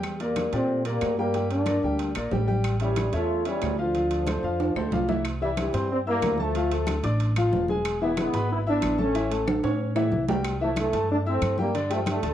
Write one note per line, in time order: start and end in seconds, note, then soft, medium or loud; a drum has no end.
0.00 0.46 E2 medium
0.00 0.14 G3 medium
0.00 0.14 G4 medium
0.00 0.15 G5 medium
0.00 high conga soft
0.00 high timbale medium
0.00 claves medium
0.20 0.51 G3 medium
0.20 0.47 A#3 medium
0.20 0.51 A#3 medium
0.20 0.47 A#4 medium
0.20 0.47 D5 medium
0.20 high conga soft
0.20 high timbale medium
0.36 high conga medium
0.36 high timbale medium
0.36 low timbale medium
0.36 claves medium
0.52 0.98 A#2 medium
0.52 0.79 A#2 medium
0.52 0.84 A3 medium
0.52 0.84 C4 medium
0.52 0.80 G4 medium
0.52 0.80 D5 medium
0.52 high conga soft
0.52 high timbale medium
0.69 high conga soft
0.85 1.17 G3 medium
0.85 1.12 A#3 medium
0.85 1.16 A#3 medium
0.85 1.12 A#4 medium
0.85 1.12 D5 medium
0.85 high conga soft
0.85 high timbale medium
1.01 1.77 G2 medium
1.01 high conga soft
1.01 high timbale medium
1.01 low timbale medium
1.01 claves medium
1.17 1.32 G3 medium
1.17 1.49 G3 medium
1.17 1.48 A#3 medium
1.17 1.32 G4 medium
1.17 1.32 G5 medium
1.17 high conga soft
1.34 1.61 G3 medium
1.34 1.61 G4 medium
1.34 1.61 G5 medium
1.34 high conga soft
1.34 high timbale medium
1.49 2.12 A#3 medium
1.49 2.12 D4 medium
1.49 high conga soft
1.49 high timbale medium
1.66 1.80 A#3 medium
1.66 1.80 A#4 medium
1.66 1.80 D5 medium
1.66 high conga medium
1.66 high timbale medium
1.66 low timbale medium
1.66 claves medium
1.82 2.13 D2 medium
1.82 2.10 G3 medium
1.82 2.10 G4 medium
1.82 2.10 G5 medium
1.82 high conga soft
1.99 high conga soft
1.99 high timbale medium
2.15 2.30 A#1 medium
2.15 2.29 A#3 medium
2.15 2.29 A#4 medium
2.15 2.29 D5 medium
2.15 high conga soft
2.15 high timbale medium
2.15 claves medium
2.31 3.07 A1 medium
2.31 2.45 G3 medium
2.31 2.45 G4 medium
2.31 2.45 G5 medium
2.31 high conga medium
2.31 low timbale medium
2.47 2.74 G3 medium
2.47 2.74 G4 medium
2.47 2.75 G5 medium
2.47 high conga medium
2.64 high conga soft
2.64 high timbale medium
2.64 claves medium
2.80 3.12 E3 medium
2.80 3.12 G3 loud
2.80 3.07 C#4 medium
2.80 3.07 C#5 medium
2.80 3.08 E5 medium
2.80 high conga soft
2.80 high timbale medium
2.96 high conga loud
2.96 high timbale medium
2.96 low timbale medium
2.96 claves medium
3.12 3.58 E2 medium
3.12 3.44 A3 loud
3.12 3.40 C#4 medium
3.12 3.44 F4 medium
3.12 3.40 C#5 medium
3.12 3.40 E5 medium
3.12 high conga soft
3.12 high timbale medium
3.29 high conga soft
3.45 3.77 E3 medium
3.45 3.77 G3 loud
3.45 3.72 C#4 medium
3.45 3.73 C#5 medium
3.45 3.73 E5 medium
3.45 high conga soft
3.45 high timbale medium
3.62 4.38 D2 medium
3.62 high conga soft
3.62 high timbale medium
3.62 low timbale medium
3.62 claves medium
3.78 4.89 D3 medium
3.78 3.92 F3 medium
3.78 4.89 F3 medium
3.78 3.92 F4 medium
3.78 3.92 F5 medium
3.78 high conga soft
3.94 4.21 F3 medium
3.94 4.22 F4 medium
3.94 4.22 F5 medium
3.94 high conga soft
3.94 high timbale medium
4.10 high conga soft
4.10 high timbale medium
4.27 4.41 A3 medium
4.27 4.41 A4 medium
4.27 4.41 C5 medium
4.27 high conga medium
4.27 high timbale medium
4.27 low timbale medium
4.27 claves medium
4.43 4.73 F2 medium
4.43 4.70 F3 medium
4.43 4.70 F4 medium
4.43 4.71 F5 medium
4.43 high conga soft
4.59 high conga soft
4.59 high timbale medium
4.75 4.91 D2 medium
4.75 4.89 A3 medium
4.75 4.90 A4 medium
4.75 4.90 C5 medium
4.75 high conga soft
4.75 low timbale medium
4.75 claves medium
4.91 5.67 C2 medium
4.91 5.06 F3 medium
4.91 5.06 F4 medium
4.91 5.06 F5 medium
4.91 high conga medium
4.91 low timbale medium
5.08 5.22 E3 medium
5.08 5.22 E4 medium
5.08 5.22 E5 medium
5.08 high conga medium
5.08 low timbale medium
5.25 high timbale medium
5.25 claves medium
5.41 5.68 E3 medium
5.41 5.50 E3 medium
5.41 5.49 G3 medium
5.41 5.68 E4 medium
5.41 5.68 E5 medium
5.41 high conga soft
5.57 5.89 E3 medium
5.57 5.89 G3 medium
5.57 high conga medium
5.57 high timbale loud
5.57 claves medium
5.73 6.19 G2 medium
5.73 6.00 C4 medium
5.73 6.01 C5 medium
5.73 6.01 C6 medium
5.73 high conga soft
5.73 high timbale medium
5.89 5.99 G3 medium
5.89 5.98 C4 loud
5.89 high conga soft
6.06 6.38 G3 medium
6.06 6.37 A#3 loud
6.06 6.33 E4 medium
6.06 6.33 E5 medium
6.06 6.33 E6 medium
6.06 high conga soft
6.21 6.98 D2 medium
6.21 high conga medium
6.21 high timbale medium
6.21 low timbale medium
6.21 claves medium
6.38 6.89 F3 medium
6.38 6.52 A3 medium
6.38 6.88 A3 medium
6.38 6.52 A4 medium
6.38 6.53 A5 medium
6.38 high conga medium
6.55 6.68 F3 medium
6.55 6.69 F4 medium
6.55 6.69 F5 medium
6.55 high conga soft
6.55 high timbale medium
6.71 6.98 A3 medium
6.71 6.98 A4 medium
6.71 6.98 A5 medium
6.71 high conga soft
6.71 high timbale medium
6.87 high conga loud
6.87 high timbale medium
6.87 claves medium
7.03 7.49 A1 medium
7.03 7.30 D4 medium
7.03 7.31 D5 medium
7.03 7.31 D6 medium
7.03 high timbale medium
7.19 high conga soft
7.19 high timbale medium
7.36 7.63 F3 medium
7.36 7.63 F4 medium
7.36 7.63 F5 medium
7.36 high conga soft
7.36 high timbale loud
7.36 claves medium
7.52 8.28 E1 medium
7.52 high conga medium
7.52 low timbale medium
7.68 7.96 G#3 medium
7.68 7.96 G#4 medium
7.68 7.96 G#5 medium
7.68 high conga medium
7.85 high conga soft
7.85 high timbale medium
7.85 claves medium
8.01 8.28 E3 medium
8.01 8.10 G#3 medium
8.01 8.10 B3 medium
8.01 8.28 E4 medium
8.01 8.28 E5 medium
8.01 high conga soft
8.17 8.49 G#3 medium
8.17 8.49 B3 loud
8.17 high conga loud
8.17 high timbale medium
8.17 claves medium
8.33 8.79 G#1 medium
8.33 8.61 B3 medium
8.33 8.61 B4 medium
8.33 8.61 B5 medium
8.33 high conga soft
8.33 high timbale medium
8.50 8.59 B3 medium
8.50 8.58 E4 loud
8.50 high conga soft
8.66 8.98 B3 medium
8.66 8.97 D4 loud
8.66 8.93 E4 medium
8.66 8.93 E5 medium
8.66 8.93 E6 medium
8.66 high conga soft
8.82 9.58 A1 medium
8.82 high conga medium
8.82 high timbale medium
8.82 claves medium
8.98 9.12 A3 medium
8.98 9.45 A3 medium
8.98 9.45 C#4 medium
8.98 9.12 A4 medium
8.98 9.12 A5 medium
8.98 high conga medium
9.14 9.28 E3 medium
9.14 9.28 E4 medium
9.14 9.28 E5 medium
9.14 high conga soft
9.14 high timbale medium
9.31 9.57 A3 medium
9.31 9.58 A4 medium
9.31 9.58 A5 medium
9.31 high conga soft
9.31 high timbale medium
9.47 high conga loud
9.47 high timbale medium
9.47 claves medium
9.63 10.09 A2 medium
9.63 9.90 C#4 medium
9.63 9.90 C#5 medium
9.63 9.90 C#6 medium
9.63 high timbale medium
9.80 high conga soft
9.95 10.22 E3 medium
9.95 10.22 E4 medium
9.95 10.23 E5 medium
9.95 high conga soft
9.95 low timbale loud
9.95 claves medium
10.12 10.88 C2 medium
10.12 high conga medium
10.28 10.55 G3 medium
10.28 10.55 G4 medium
10.28 10.55 G5 medium
10.28 high conga medium
10.28 low timbale medium
10.44 high conga soft
10.44 high timbale loud
10.44 claves medium
10.60 10.88 E3 medium
10.60 10.70 F3 medium
10.60 10.69 A3 medium
10.60 10.88 E4 medium
10.60 10.88 E5 medium
10.60 high conga soft
10.76 11.09 E3 medium
10.76 11.08 A3 loud
10.76 high conga medium
10.76 high timbale loud
10.76 claves medium
10.93 11.38 G2 medium
10.93 11.20 A3 medium
10.93 11.20 A4 medium
10.93 11.20 A5 medium
10.93 high conga soft
10.93 high timbale medium
11.09 11.18 A3 medium
11.09 11.18 D4 loud
11.09 high conga soft
11.25 11.57 A3 medium
11.25 11.57 C4 loud
11.25 11.53 E4 medium
11.25 11.53 E5 medium
11.25 11.53 E6 medium
11.25 high conga soft
11.41 12.17 G2 medium
11.41 high conga medium
11.41 high timbale medium
11.41 claves medium
11.58 11.72 G3 medium
11.58 11.75 G3 medium
11.58 11.74 A#3 medium
11.58 11.72 G4 medium
11.58 11.72 G5 medium
11.58 high conga medium
11.75 11.88 D3 medium
11.75 11.88 D4 medium
11.75 11.88 D5 medium
11.75 high timbale medium
11.90 12.00 F3 medium
11.90 12.17 G3 medium
11.90 12.00 A3 medium
11.90 12.17 G4 medium
11.90 12.17 G5 medium
11.90 high conga soft
11.90 high timbale medium
12.06 12.34 D3 medium
12.06 12.34 A3 loud
12.06 high conga loud
12.06 high timbale medium
12.06 claves medium
12.22 12.34 D2 medium
12.22 12.34 A3 medium
12.22 12.34 A4 medium
12.22 12.34 A5 medium
12.22 high timbale medium